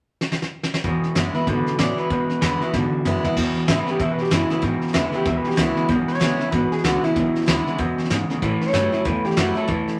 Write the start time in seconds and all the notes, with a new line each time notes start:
0.21 snare
0.32 snare
0.42 snare
0.63 snare
0.74 snare
0.84 E2 B2, kick, snare
1.03 snare
1.15 E2 F#2 C#3 D3 G#3 B3 E4, snare, hi-hat pedal
1.34 E2 B2 B3 E4 B4, snare
1.47 E2 G#2 B2 D3, kick, snare
1.66 muted upright bass stroke, snare
1.78 E2 A2 C#3 D3 G#3 B3 E4 D5, snare, hi-hat pedal
1.97 E2 B2 B4, snare
2.10 E2 B2 B4, kick, snare
2.30 muted upright bass stroke, snare
2.42 E2 C#3 D3 G#3 B3 E4, snare, hi-hat pedal
2.60 E2 B2 B3 E4, muted upright bass stroke, snare
2.73 E2 G#2 B2 D3, kick, snare
2.93 muted upright bass stroke
3.05 E2 F#2 C#3 D3 G#3 B3 E4, hi-hat pedal, mid tom
3.24 E2 B2 B3 E4, muted upright bass stroke, floor tom
3.37 E2 B2, kick, snare, crash
3.55 muted upright bass stroke, snare
3.68 E2 G#2 C#3 D3 G#3 B3 E4 E5, snare, hi-hat pedal
3.79 B4
3.87 E2 C#3 B3 E4 G4, muted upright bass stroke, snare
3.99 E2 B2 E5, kick, snare
4.12 B4
4.18 G4, muted upright bass stroke, snare
4.25 snare
4.31 E2 F#2 C#3 D3 G#3 B3 E4, snare, hi-hat pedal
4.49 E2 C#3 B3 E4, muted upright bass stroke, snare
4.62 E2 G#2 B2, kick, snare
4.81 muted upright bass stroke, snare
4.88 snare
4.93 E2 C#3 D3 G#3 B3 E4 E5, snare, hi-hat pedal
5.05 B4
5.12 E2 C#3 B3 E4 G4, muted upright bass stroke, snare
5.25 D2 E2 B2 E5, kick, snare
5.38 B4
5.45 G4, muted upright bass stroke, snare
5.51 snare
5.56 C#2 E2 C#3 D3 G#3 B3 E4, snare, hi-hat pedal
5.76 E2 C#3, snare
5.89 B1 E2 B2, kick, snare
6.08 C#5, muted upright bass stroke, snare
6.14 snare
6.20 A1 E2 C#3 D3 G#3 B3 E4, snare, hi-hat pedal
6.39 E2 C#3 B3 E4, muted upright bass stroke, snare
6.51 G#1 E2 B2 B4, kick, snare
6.72 G#4, snare
6.78 snare
6.84 C#2 E2 C#3 D3 G#3 B3 E4 F#4, snare, hi-hat pedal
7.03 E2 C#3 B3 E4, snare
7.16 B1 E2 B2, kick, snare
7.35 muted upright bass stroke, snare
7.42 snare
7.46 D2 E2 C#3 D3 G#3 B3 E4, snare, hi-hat pedal
7.66 E2 C#3, snare
7.78 E2 F#2 B2, kick, snare
7.98 muted upright bass stroke, snare
8.04 snare
8.10 E2 G#2 C#3, snare, hi-hat pedal
8.30 E2 C#3, snare
8.42 A2 E3, kick, snare
8.61 C#5, snare
8.68 snare
8.73 G2 A2 E3 F#3 G3 C#4 E4, snare, hi-hat pedal
8.92 A2 F#3 C#4 E4, snare
9.05 E2 A2 E3 B4, kick, snare
9.25 G4, muted upright bass stroke, snare
9.31 snare
9.37 F#2 A2 E3 F#3 G3 C#4 E4 F#4, snare, hi-hat pedal
9.55 A2 F#3 C#4 E4 A4, snare
9.68 E2 A2 E3, kick, snare
9.87 muted upright bass stroke, snare